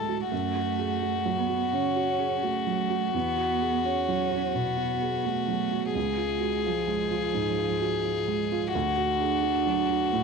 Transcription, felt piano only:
0.00 0.34 A2 soft
0.00 0.34 A3 soft
0.00 0.09 F#4 soft
0.00 0.34 G#4 soft
0.09 0.32 F#4 soft
0.32 1.68 F#2 soft
0.56 0.93 F#4 soft
0.79 1.02 G#4 soft
1.02 1.40 F#4 soft
1.26 1.63 F#3 soft
1.49 1.87 F#4 soft
1.73 2.10 C#3 soft
1.96 2.34 F#4 soft
2.19 2.43 G#4 soft
2.43 2.81 F#4 soft
2.67 3.04 F#3 soft
2.90 3.14 F#4 soft
3.14 4.51 E2 soft
3.37 3.75 F#4 soft
3.62 3.85 G#4 soft
3.84 4.22 F#4 soft
4.08 4.46 F#3 soft
4.32 4.69 F#4 soft
4.54 4.92 B2 soft
4.78 5.15 F#4 soft
5.02 5.25 G#4 soft
5.25 5.63 F#4 soft
5.48 5.86 F#3 soft
5.72 5.95 F#4 soft
5.95 7.30 C#2 soft
6.17 6.55 F4 soft
6.41 6.65 F#4 soft
6.65 7.02 F4 soft
6.88 7.25 G#3 soft
7.11 7.48 F4 soft
7.34 7.72 G#2 soft
7.58 7.95 F4 soft
7.81 8.04 F#4 soft
8.04 8.42 F4 soft
8.28 8.65 G#3 soft
8.52 8.75 F4 soft
8.75 10.10 D2 soft
8.97 9.35 F#4 soft
9.21 9.44 G#4 soft
9.43 9.81 F#4 soft
9.67 10.04 F#3 soft
9.90 10.23 F#4 soft
10.13 10.23 A2 soft

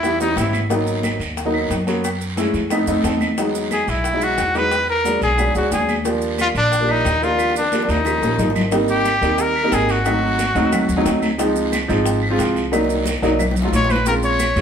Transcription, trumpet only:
0.00 0.21 E4 medium
0.22 0.39 D#4 medium
0.38 0.62 E4 medium
3.73 3.91 G#4 medium
3.90 4.25 E4 medium
4.23 4.59 F#4 loud
4.57 4.89 B4 medium
4.90 5.20 A#4 medium
5.23 5.54 G#4 medium
5.57 5.72 F#4 medium
5.73 5.96 G#4 medium
6.41 6.48 F4 loud
6.57 6.93 D4 medium
6.91 7.26 D#4 loud
7.24 7.57 F4 medium
7.57 7.92 D4 medium
7.90 8.56 D#4 medium
8.90 9.42 G4 medium
9.41 9.75 A#4 medium
9.74 9.93 G#4 medium
9.91 11.24 F#4 medium
13.75 13.93 C#5 loud
13.91 14.07 B4 medium
14.08 14.15 A#4 medium
14.24 14.61 C#5 loud

